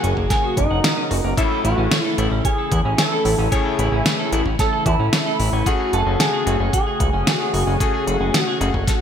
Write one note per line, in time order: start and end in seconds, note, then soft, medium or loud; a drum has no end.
0.00 0.14 F#1 loud
0.00 1.34 C#3 medium
0.00 1.34 F#3 medium
0.00 1.33 A#3 medium
0.00 0.12 C#4 medium
0.00 1.33 F#4 medium
0.00 0.30 G#4 loud
0.00 0.27 G#5 loud
0.00 closed hi-hat medium
0.17 0.27 F#1 medium
0.17 0.29 A#3 medium
0.17 kick medium
0.30 0.57 G#4 loud
0.30 0.35 A#4 medium
0.30 0.56 G#5 loud
0.30 kick loud
0.30 snare soft
0.30 closed hi-hat medium
0.44 0.56 F#4 medium
0.57 0.67 F#1 medium
0.57 0.62 C#4 medium
0.57 1.34 D#4 loud
0.57 1.34 D#5 medium
0.57 kick loud
0.57 closed hi-hat medium
0.71 0.81 F#1 medium
0.71 0.79 F#5 medium
0.84 0.92 C#4 medium
0.84 snare loud
0.84 closed hi-hat medium
0.97 1.02 C#4 loud
1.11 1.21 F#1 loud
1.11 1.16 F#4 loud
1.11 open hi-hat medium
1.24 1.34 F#1 medium
1.24 1.32 A#3 medium
1.37 2.15 A2 medium
1.37 5.62 C#3 medium
1.37 5.62 E3 medium
1.37 2.15 A3 medium
1.37 9.01 A3 medium
1.37 2.15 C#4 medium
1.37 1.62 E4 medium
1.37 2.15 E4 medium
1.37 5.62 E4 medium
1.37 2.15 A4 loud
1.37 1.43 C#5 medium
1.37 1.63 E5 medium
1.37 kick loud
1.37 closed hi-hat medium
1.51 1.63 A4 medium
1.64 1.74 A1 loud
1.64 1.73 E4 medium
1.64 2.14 F#4 medium
1.64 2.14 F#5 medium
1.64 closed hi-hat medium
1.78 1.88 A1 medium
1.78 1.90 C#4 medium
1.91 1.96 C#5 medium
1.91 snare loud
1.91 closed hi-hat medium
2.05 2.17 A4 medium
2.18 2.28 A1 medium
2.18 2.29 A2 medium
2.18 2.29 A3 medium
2.18 2.29 C#4 medium
2.18 2.26 E4 medium
2.18 2.28 E4 medium
2.18 2.28 A4 medium
2.18 closed hi-hat medium
2.31 2.41 A1 medium
2.31 2.44 C#4 medium
2.45 2.95 G#4 loud
2.45 2.50 C#5 medium
2.45 2.95 G#5 loud
2.45 kick loud
2.45 closed hi-hat medium
2.58 2.70 A4 medium
2.71 2.82 E2 medium
2.71 2.80 E4 medium
2.71 kick loud
2.71 closed hi-hat medium
2.85 2.95 A1 medium
2.85 2.97 C#4 medium
2.98 3.54 A4 loud
2.98 3.03 C#5 medium
2.98 3.48 A5 loud
2.98 snare loud
2.98 closed hi-hat medium
3.12 3.24 A4 medium
3.25 3.35 A1 loud
3.25 3.33 E4 medium
3.25 open hi-hat medium
3.38 3.48 A1 medium
3.38 3.51 C#4 medium
3.52 4.29 A2 medium
3.52 4.29 A3 medium
3.52 4.29 C#4 medium
3.52 4.29 E4 medium
3.52 4.32 G#4 loud
3.52 4.29 C#5 loud
3.52 3.57 C#5 medium
3.52 4.28 G#5 loud
3.52 kick loud
3.52 closed hi-hat medium
3.65 3.78 A4 medium
3.79 3.89 A1 loud
3.79 3.87 E4 medium
3.79 closed hi-hat medium
3.92 4.02 A1 medium
3.92 4.05 C#4 medium
4.06 4.11 C#5 medium
4.06 snare loud
4.06 closed hi-hat medium
4.19 4.31 A4 medium
4.32 4.42 A1 medium
4.32 4.43 A2 medium
4.32 4.43 A3 medium
4.32 4.43 C#4 medium
4.32 4.43 E4 medium
4.32 4.41 E4 medium
4.32 4.43 A4 medium
4.32 closed hi-hat medium
4.46 4.56 A1 medium
4.46 4.58 C#4 medium
4.46 kick medium
4.59 4.84 A4 loud
4.59 4.64 C#5 medium
4.59 4.84 A5 loud
4.59 kick loud
4.59 snare soft
4.59 closed hi-hat medium
4.73 4.85 A4 medium
4.86 4.96 E2 medium
4.86 4.94 E4 medium
4.86 5.68 E4 loud
4.86 5.63 E5 loud
4.86 kick loud
4.86 closed hi-hat medium
4.99 5.09 A1 medium
4.99 5.12 C#4 medium
5.13 5.18 C#5 medium
5.13 snare loud
5.13 closed hi-hat medium
5.26 5.38 A4 medium
5.39 5.49 A1 loud
5.39 5.48 E4 medium
5.39 open hi-hat medium
5.53 5.63 A1 medium
5.53 5.65 C#4 medium
5.66 9.01 C#3 medium
5.66 6.43 A3 medium
5.66 6.43 C#4 medium
5.66 9.01 F#4 medium
5.66 6.44 F#4 medium
5.66 5.95 F#4 loud
5.66 6.43 G#4 loud
5.66 5.71 A4 medium
5.66 5.91 F#5 loud
5.66 kick loud
5.66 closed hi-hat medium
5.80 5.92 G#4 medium
5.93 6.03 F#1 loud
5.93 6.01 F#4 medium
5.93 6.20 A4 loud
5.93 6.18 A5 loud
5.93 closed hi-hat medium
6.06 6.16 F#1 medium
6.06 6.19 C#4 medium
6.20 6.70 G#4 loud
6.20 6.25 A4 medium
6.20 6.70 G#5 loud
6.20 snare loud
6.20 closed hi-hat medium
6.33 6.45 G#4 medium
6.46 6.56 F#1 medium
6.46 6.57 A3 medium
6.46 6.57 C#4 medium
6.46 6.55 F#4 medium
6.46 6.57 F#4 medium
6.46 6.57 G#4 medium
6.46 closed hi-hat medium
6.60 6.70 F#1 medium
6.60 6.72 C#4 medium
6.73 8.42 G#4 loud
6.73 6.78 A4 medium
6.73 8.41 G#5 medium
6.73 kick loud
6.73 closed hi-hat medium
6.87 6.99 G#4 medium
7.00 7.10 C#2 medium
7.00 7.08 F#4 medium
7.00 kick loud
7.00 closed hi-hat medium
7.13 7.23 F#1 medium
7.13 7.26 C#4 medium
7.27 7.32 A4 medium
7.27 snare loud
7.27 closed hi-hat medium
7.40 7.53 G#4 medium
7.54 7.64 F#1 medium
7.54 7.62 F#4 medium
7.54 open hi-hat medium
7.67 7.77 F#1 medium
7.67 7.79 C#4 medium
7.80 8.58 A3 medium
7.80 8.58 C#4 medium
7.80 8.58 F#4 medium
7.80 8.58 G#4 loud
7.80 7.85 A4 medium
7.80 kick loud
7.80 closed hi-hat medium
7.94 8.06 G#4 medium
8.07 8.17 F#1 medium
8.07 8.16 F#4 medium
8.07 closed hi-hat medium
8.20 8.31 F#1 medium
8.20 8.33 C#4 medium
8.34 8.39 A4 medium
8.34 snare loud
8.34 closed hi-hat medium
8.41 9.01 F#4 loud
8.41 9.01 F#5 medium
8.47 8.60 G#4 medium
8.61 8.71 F#1 loud
8.61 8.71 A3 medium
8.61 8.71 C#4 medium
8.61 8.69 F#4 medium
8.61 8.71 F#4 medium
8.61 8.71 G#4 medium
8.61 closed hi-hat medium
8.74 8.84 F#1 medium
8.74 8.86 C#4 medium
8.74 kick medium
8.87 8.93 A4 medium
8.87 kick loud
8.87 snare soft
8.87 closed hi-hat medium